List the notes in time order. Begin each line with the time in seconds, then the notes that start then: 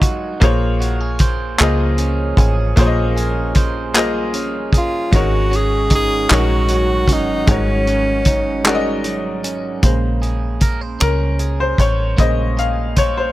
Already playing: G#1 F#3 G#3 D#4 F4 F#4 A#4 C5 C#5 D5 D#5
0.02 F#4, kick, closed hi-hat
0.40 A#1 A#3 F4 G#4 C5 C#5, kick, closed hi-hat
0.80 F#4, closed hi-hat
1.00 G#4
1.19 C5, kick, closed hi-hat
1.58 C#2 F3 A#3 C#4 F4 G#4 C5 D#5, clap, closed hi-hat
1.98 C#4, closed hi-hat
2.37 A1 G#4, kick, closed hi-hat
2.76 A#1 A#3 F4 G#4 C5 C#5, kick, closed hi-hat
2.86 D#5
3.17 G#4, closed hi-hat
3.55 C5, kick, closed hi-hat
3.94 A#3 F4 G#4 C5 D#5, clap, closed hi-hat
4.34 C#4, closed hi-hat
4.73 G#4, kick, closed hi-hat
4.77 F4
5.11 G#1 G#2 D#3 G#3 C#4 D#4 F#4 A#4 C#5, kick, closed hi-hat
5.16 F#4
5.51 C#4, closed hi-hat
5.56 G#4
5.90 D#4, kick, closed hi-hat
5.95 G#4
6.28 A#1 G#3 C#4 D#4 F#4 A#4 C#5, clap, closed hi-hat
6.34 F#4
6.68 F#3, closed hi-hat
7.08 G1 C#4, kick, closed hi-hat
7.12 D#4
7.47 G#1 G#2 G#3 D#4 F#4 A#4, kick, closed hi-hat
7.51 C#4 C#5
7.87 C#4, closed hi-hat
8.25 D#4, kick, closed hi-hat
8.64 G#3 C#4 D#4 F#4 A#4, clap, closed hi-hat
8.68 D5
8.75 D#5
9.04 F#3, closed hi-hat
9.44 C#4, closed hi-hat
9.83 A#1 C#3 G#3 A#3 C5, kick, closed hi-hat
10.22 G#4, closed hi-hat
10.61 A#4, kick, closed hi-hat
10.81 C5
11.00 C#2 C#4 A#4, finger snap, closed hi-hat
11.39 G#4, closed hi-hat
11.60 C5
11.78 A1 C5 C#5, kick, closed hi-hat
12.17 A#1 C#3 G#3 A#3 C5 D#5, kick, closed hi-hat
12.57 G#4 F5, closed hi-hat
12.96 C5 C#5, kick, closed hi-hat
13.17 C5